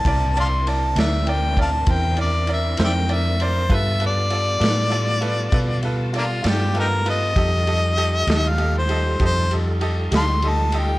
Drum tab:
RD |xxxxxxxxxxxx|xxxxxxxxxxxx|xxxxxxxxxxxx|
SD |---o-----o--|---o-----o--|---o-----o--|
BD |o----oo-----|o-----o-----|o-----o-----|